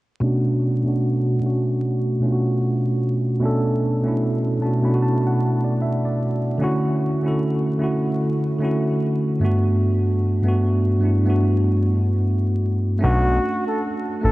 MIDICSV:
0, 0, Header, 1, 4, 480
1, 0, Start_track
1, 0, Key_signature, 2, "minor"
1, 0, Tempo, 800000
1, 134, Time_signature, 4, 2, 24, 8
1, 8591, End_track
2, 0, Start_track
2, 0, Title_t, "Flugelhorn"
2, 0, Program_c, 0, 56
2, 7824, Note_on_c, 0, 66, 95
2, 8175, Note_off_c, 0, 66, 0
2, 8203, Note_on_c, 0, 69, 69
2, 8290, Note_off_c, 0, 69, 0
2, 8542, Note_on_c, 0, 69, 86
2, 8591, Note_off_c, 0, 69, 0
2, 8591, End_track
3, 0, Start_track
3, 0, Title_t, "Tine electric piano"
3, 0, Program_c, 1, 4
3, 120, Note_on_c, 1, 47, 105
3, 127, Note_on_c, 1, 57, 87
3, 134, Note_on_c, 1, 61, 88
3, 143, Note_on_c, 1, 62, 101
3, 153, Note_on_c, 1, 66, 106
3, 234, Control_c, 1, 64, 127
3, 377, Note_off_c, 1, 47, 0
3, 380, Note_off_c, 1, 57, 0
3, 384, Note_off_c, 1, 61, 0
3, 388, Note_off_c, 1, 62, 0
3, 394, Note_off_c, 1, 66, 0
3, 498, Note_on_c, 1, 47, 70
3, 506, Note_on_c, 1, 57, 60
3, 516, Note_on_c, 1, 61, 61
3, 525, Note_on_c, 1, 62, 63
3, 530, Note_on_c, 1, 66, 76
3, 753, Note_off_c, 1, 47, 0
3, 757, Note_off_c, 1, 57, 0
3, 761, Note_off_c, 1, 61, 0
3, 766, Note_off_c, 1, 62, 0
3, 769, Note_off_c, 1, 66, 0
3, 841, Note_on_c, 1, 47, 61
3, 850, Note_on_c, 1, 57, 57
3, 858, Note_on_c, 1, 61, 66
3, 866, Note_on_c, 1, 62, 60
3, 877, Note_on_c, 1, 66, 76
3, 1193, Note_off_c, 1, 47, 0
3, 1198, Note_off_c, 1, 57, 0
3, 1202, Note_off_c, 1, 61, 0
3, 1206, Note_off_c, 1, 62, 0
3, 1211, Note_off_c, 1, 66, 0
3, 1322, Note_on_c, 1, 47, 75
3, 1332, Note_on_c, 1, 57, 66
3, 1338, Note_on_c, 1, 61, 71
3, 1346, Note_on_c, 1, 62, 64
3, 1354, Note_on_c, 1, 65, 65
3, 1389, Note_off_c, 1, 65, 0
3, 1395, Note_on_c, 1, 66, 82
3, 1828, Note_off_c, 1, 47, 0
3, 1833, Note_off_c, 1, 57, 0
3, 1836, Note_off_c, 1, 61, 0
3, 1840, Note_off_c, 1, 62, 0
3, 1865, Note_off_c, 1, 66, 0
3, 2040, Note_on_c, 1, 47, 97
3, 2047, Note_on_c, 1, 57, 84
3, 2055, Note_on_c, 1, 61, 90
3, 2064, Note_on_c, 1, 62, 87
3, 2073, Note_on_c, 1, 69, 108
3, 2297, Note_off_c, 1, 47, 0
3, 2301, Note_off_c, 1, 57, 0
3, 2304, Note_off_c, 1, 61, 0
3, 2309, Note_off_c, 1, 62, 0
3, 2314, Note_off_c, 1, 69, 0
3, 2413, Note_on_c, 1, 47, 68
3, 2422, Note_on_c, 1, 57, 70
3, 2431, Note_on_c, 1, 61, 67
3, 2438, Note_on_c, 1, 62, 70
3, 2448, Note_on_c, 1, 64, 82
3, 2670, Note_off_c, 1, 47, 0
3, 2674, Note_off_c, 1, 57, 0
3, 2679, Note_off_c, 1, 61, 0
3, 2683, Note_off_c, 1, 62, 0
3, 2687, Note_off_c, 1, 64, 0
3, 2755, Note_on_c, 1, 47, 60
3, 2762, Note_on_c, 1, 57, 51
3, 2770, Note_on_c, 1, 61, 55
3, 2772, Note_on_c, 1, 81, 64
3, 2780, Note_on_c, 1, 62, 57
3, 2790, Note_on_c, 1, 66, 63
3, 2860, Note_off_c, 1, 47, 0
3, 2864, Note_off_c, 1, 57, 0
3, 2868, Note_off_c, 1, 61, 0
3, 2873, Note_off_c, 1, 62, 0
3, 2877, Note_off_c, 1, 66, 0
3, 2891, Note_on_c, 1, 47, 79
3, 2899, Note_on_c, 1, 57, 65
3, 2902, Note_off_c, 1, 81, 0
3, 2907, Note_on_c, 1, 83, 60
3, 2909, Note_on_c, 1, 61, 67
3, 2915, Note_on_c, 1, 62, 62
3, 2923, Note_on_c, 1, 64, 63
3, 2951, Note_off_c, 1, 64, 0
3, 2964, Note_on_c, 1, 66, 89
3, 3004, Note_off_c, 1, 83, 0
3, 3013, Note_on_c, 1, 81, 72
3, 3142, Note_off_c, 1, 81, 0
3, 3160, Note_on_c, 1, 78, 73
3, 3380, Note_off_c, 1, 78, 0
3, 3386, Note_on_c, 1, 74, 57
3, 3483, Note_off_c, 1, 74, 0
3, 3491, Note_on_c, 1, 76, 69
3, 3556, Note_off_c, 1, 47, 0
3, 3560, Note_off_c, 1, 57, 0
3, 3565, Note_off_c, 1, 61, 0
3, 3568, Note_off_c, 1, 62, 0
3, 3593, Note_off_c, 1, 66, 0
3, 3621, Note_off_c, 1, 76, 0
3, 3631, Note_on_c, 1, 74, 58
3, 3947, Note_on_c, 1, 50, 95
3, 3949, Note_off_c, 1, 74, 0
3, 3957, Note_on_c, 1, 57, 88
3, 3966, Note_on_c, 1, 61, 99
3, 3973, Note_on_c, 1, 64, 83
3, 3981, Note_on_c, 1, 66, 117
3, 3982, Control_c, 1, 64, 0
3, 4080, Control_c, 1, 64, 127
3, 4211, Note_off_c, 1, 50, 0
3, 4216, Note_off_c, 1, 57, 0
3, 4220, Note_off_c, 1, 61, 0
3, 4224, Note_off_c, 1, 64, 0
3, 4227, Note_off_c, 1, 66, 0
3, 4333, Note_on_c, 1, 50, 65
3, 4340, Note_on_c, 1, 57, 67
3, 4347, Note_on_c, 1, 61, 58
3, 4357, Note_on_c, 1, 64, 68
3, 4367, Note_on_c, 1, 69, 77
3, 4590, Note_off_c, 1, 50, 0
3, 4594, Note_off_c, 1, 57, 0
3, 4597, Note_off_c, 1, 61, 0
3, 4602, Note_off_c, 1, 64, 0
3, 4607, Note_off_c, 1, 69, 0
3, 4669, Note_on_c, 1, 50, 69
3, 4677, Note_on_c, 1, 57, 67
3, 4684, Note_on_c, 1, 61, 64
3, 4692, Note_on_c, 1, 64, 65
3, 4703, Note_on_c, 1, 66, 80
3, 5027, Note_off_c, 1, 50, 0
3, 5032, Note_off_c, 1, 57, 0
3, 5035, Note_off_c, 1, 61, 0
3, 5039, Note_off_c, 1, 64, 0
3, 5044, Note_off_c, 1, 66, 0
3, 5153, Note_on_c, 1, 50, 82
3, 5163, Note_on_c, 1, 57, 74
3, 5171, Note_on_c, 1, 61, 69
3, 5180, Note_on_c, 1, 64, 75
3, 5187, Note_on_c, 1, 66, 80
3, 5637, Note_on_c, 1, 43, 79
3, 5639, Note_off_c, 1, 57, 0
3, 5643, Note_off_c, 1, 50, 0
3, 5647, Note_on_c, 1, 57, 75
3, 5652, Note_off_c, 1, 61, 0
3, 5653, Note_on_c, 1, 59, 68
3, 5657, Note_off_c, 1, 64, 0
3, 5660, Note_off_c, 1, 66, 0
3, 5662, Control_c, 1, 64, 0
3, 5662, Note_on_c, 1, 62, 69
3, 5669, Note_on_c, 1, 66, 84
3, 5758, Control_c, 1, 64, 127
3, 6125, Note_off_c, 1, 43, 0
3, 6130, Note_off_c, 1, 57, 0
3, 6133, Note_off_c, 1, 59, 0
3, 6138, Note_off_c, 1, 62, 0
3, 6141, Note_off_c, 1, 66, 0
3, 6254, Note_on_c, 1, 43, 76
3, 6263, Note_on_c, 1, 57, 66
3, 6269, Note_on_c, 1, 59, 70
3, 6278, Note_on_c, 1, 62, 64
3, 6288, Note_on_c, 1, 66, 83
3, 6511, Note_off_c, 1, 43, 0
3, 6515, Note_off_c, 1, 57, 0
3, 6518, Note_off_c, 1, 59, 0
3, 6523, Note_off_c, 1, 62, 0
3, 6528, Note_off_c, 1, 66, 0
3, 6596, Note_on_c, 1, 43, 68
3, 6605, Note_on_c, 1, 57, 55
3, 6615, Note_on_c, 1, 59, 50
3, 6621, Note_on_c, 1, 62, 58
3, 6632, Note_on_c, 1, 64, 64
3, 6701, Note_off_c, 1, 43, 0
3, 6705, Note_off_c, 1, 57, 0
3, 6710, Note_off_c, 1, 59, 0
3, 6713, Note_off_c, 1, 62, 0
3, 6718, Note_off_c, 1, 64, 0
3, 6744, Note_on_c, 1, 43, 73
3, 6754, Note_on_c, 1, 57, 70
3, 6762, Note_on_c, 1, 59, 66
3, 6772, Note_on_c, 1, 62, 62
3, 6778, Note_on_c, 1, 66, 78
3, 7403, Note_off_c, 1, 43, 0
3, 7408, Note_off_c, 1, 57, 0
3, 7412, Note_off_c, 1, 59, 0
3, 7417, Note_off_c, 1, 62, 0
3, 7420, Note_off_c, 1, 66, 0
3, 7795, Note_on_c, 1, 57, 89
3, 7804, Note_on_c, 1, 61, 79
3, 7816, Note_on_c, 1, 62, 77
3, 7823, Control_c, 1, 64, 0
3, 7829, Note_on_c, 1, 66, 90
3, 7916, Control_c, 1, 64, 127
3, 8305, Note_off_c, 1, 57, 0
3, 8309, Note_off_c, 1, 61, 0
3, 8315, Note_off_c, 1, 62, 0
3, 8322, Note_off_c, 1, 66, 0
3, 8527, Note_on_c, 1, 57, 66
3, 8537, Note_on_c, 1, 61, 57
3, 8547, Note_on_c, 1, 62, 54
3, 8558, Note_on_c, 1, 63, 58
3, 8591, Note_off_c, 1, 57, 0
3, 8591, Note_off_c, 1, 61, 0
3, 8591, Note_off_c, 1, 62, 0
3, 8591, Note_off_c, 1, 63, 0
3, 8591, End_track
4, 0, Start_track
4, 0, Title_t, "Analog synth bass"
4, 0, Program_c, 2, 38
4, 7823, Note_on_c, 2, 35, 105
4, 8036, Note_off_c, 2, 35, 0
4, 8545, Note_on_c, 2, 33, 90
4, 8591, Note_off_c, 2, 33, 0
4, 8591, End_track
0, 0, End_of_file